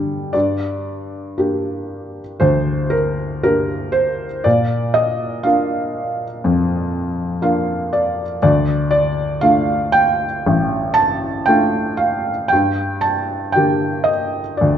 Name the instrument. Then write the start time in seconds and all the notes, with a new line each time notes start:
felt piano
Already playing: E2 D3 G3 B3
0.33 G2 D5
1.38 A#3 D4 G4
2.40 D2 C5
2.90 A#4
3.43 A#3 D4 G4 A#4
3.92 C5
4.44 A#2 D5
4.94 D#5
5.43 A#3 D4 F4 F5
6.44 F2
7.42 A#3 D4 F4 F5
7.93 D5
8.42 D2 D5
8.91 D5
9.41 A3 D4 F4 F5
9.92 G5
10.46 A1
10.94 A5
11.46 A3 D4 F4 G5
11.97 F5
12.48 G5
12.53 G2
13.01 A5
13.52 D3 A#3 G4 G5
14.04 D#5
14.57 D5
14.61 D2